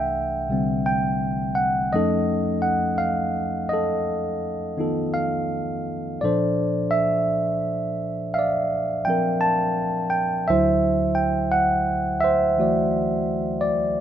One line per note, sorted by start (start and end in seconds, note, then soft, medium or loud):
0.00 1.91 C2 soft
0.00 0.48 C3 soft
0.00 1.94 E3 soft
0.00 1.93 A3 soft
0.00 1.97 D4 soft
0.00 1.91 E5 soft
0.00 1.55 F#5 medium
0.00 0.85 G5 medium
0.49 1.93 C3 soft
0.49 1.93 D3 soft
0.49 1.94 G3 soft
0.49 1.94 C4 soft
0.86 1.52 G5 medium
1.55 1.90 F#5 medium
1.93 6.23 F2 soft
1.93 6.22 F3 soft
1.93 6.24 A3 soft
1.93 6.24 C#4 soft
1.93 4.78 D#4 soft
1.93 3.72 A4 soft
1.93 2.59 D#5 medium
2.62 2.97 F#5 medium
2.98 3.65 F5 medium
3.69 5.10 D#5 medium
3.73 4.79 A4 medium
4.77 6.23 D#3 soft
4.77 6.23 B3 soft
4.77 6.23 D#4 soft
4.77 6.24 F4 soft
4.77 6.23 A4 soft
5.14 6.18 F5 medium
6.21 10.49 A#2 soft
6.21 9.06 F3 soft
6.21 10.50 D4 soft
6.21 10.50 A4 soft
6.21 10.49 C5 soft
6.21 6.89 D5 medium
6.91 8.33 E5 medium
8.34 8.38 E5 soft
8.34 9.02 F5 medium
8.39 10.46 D5 soft
9.05 10.49 F3 soft
9.05 10.49 C4 soft
9.05 9.43 G5 medium
9.10 10.50 A#4 soft
9.41 10.08 A5 medium
10.10 10.45 G5 medium
10.48 14.01 D2 soft
10.48 14.01 D3 soft
10.48 14.01 F#3 soft
10.48 14.01 E4 soft
10.48 12.23 C5 soft
10.48 11.20 E5 medium
11.15 11.54 G5 medium
11.52 12.18 F#5 medium
12.21 14.01 C5 medium
12.21 13.58 E5 medium
12.58 14.01 E3 soft
12.58 14.01 A3 soft
12.58 14.01 F#4 soft
12.58 13.60 D5 soft
13.61 14.01 D5 medium